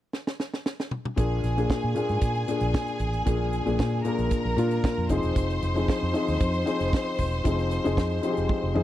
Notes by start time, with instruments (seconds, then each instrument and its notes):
0.13 snare
0.27 snare
0.40 snare
0.54 snare
0.66 snare
0.80 snare
0.91 mid tom
1.05 mid tom
1.16 fingered electric bass A#1, grand piano A#2 A#3 D4 G#4, string section G#4 G#5, kick, closed hi-hat
1.44 fingered electric bass A#1, snare, closed hi-hat
1.57 grand piano A#2 A#3 D4 G#4, closed hi-hat
1.70 kick, snare
1.84 fingered electric bass A#2
1.95 grand piano A#2 A#3 D4 G#4, closed hi-hat
2.09 fingered electric bass G#2, closed hi-hat
2.21 fingered electric bass A#2, kick, closed hi-hat
2.35 closed hi-hat
2.48 grand piano A#2 A#3 D4 G#4, closed hi-hat
2.60 fingered electric bass A#1, closed hi-hat
2.74 kick, snare
2.87 closed hi-hat
2.99 fingered electric bass A1, kick, closed hi-hat
3.13 closed hi-hat
3.26 fingered electric bass A#1, grand piano A#2 A#3 D4 G#4, kick, closed hi-hat
3.53 closed hi-hat
3.65 fingered electric bass A#1, grand piano A#2 A#3 D4 G#4, closed hi-hat
3.79 fingered electric bass A#2, kick, snare
4.04 grand piano A#2 A#3 D4 G#4, string section A#4 A#5, closed hi-hat
4.18 fingered electric bass A#1, closed hi-hat
4.31 kick, closed hi-hat
4.45 fingered electric bass A#1
4.57 grand piano A#2 A#3 D4 F4, fingered electric bass A#2, closed hi-hat
4.71 closed hi-hat
4.84 kick, snare
4.98 fingered electric bass F2
5.09 fingered electric bass F1, grand piano F3 C4 D#4 G#4, string section C5 C6, kick, closed hi-hat
5.23 fingered electric bass E1, closed hi-hat
5.36 fingered electric bass F1, kick, closed hi-hat
5.50 closed hi-hat
5.62 fingered electric bass F1, closed hi-hat
5.75 grand piano F3 C4 D#4 G#4, closed hi-hat
5.88 muted fingered electric bass stroke, kick, snare
6.03 fingered electric bass F2
6.13 grand piano F3 C4 D#4 G#4, closed hi-hat
6.28 fingered electric bass D#2, closed hi-hat
6.40 fingered electric bass F2, kick, closed hi-hat
6.54 closed hi-hat
6.65 grand piano F3 C4 D#4 G#4, closed hi-hat
6.80 fingered electric bass F1, closed hi-hat
6.93 kick, snare
7.18 fingered electric bass E1, kick, open hi-hat
7.32 closed hi-hat
7.44 fingered electric bass F1, grand piano F3 C4 D#4 G#4, kick, closed hi-hat
7.59 closed hi-hat
7.71 snare, closed hi-hat
7.84 fingered electric bass F1, grand piano F3 C4 D#4 G#4, closed hi-hat
7.97 fingered electric bass F2, kick, snare
8.10 closed hi-hat
8.23 grand piano F3 C4 D#4 G4, closed hi-hat
8.30 grand piano G#4
8.37 fingered electric bass F1, closed hi-hat
8.49 kick, high tom
8.63 fingered electric bass F1
8.74 fingered electric bass F2, grand piano F3 C4 D#4 G#4, mid tom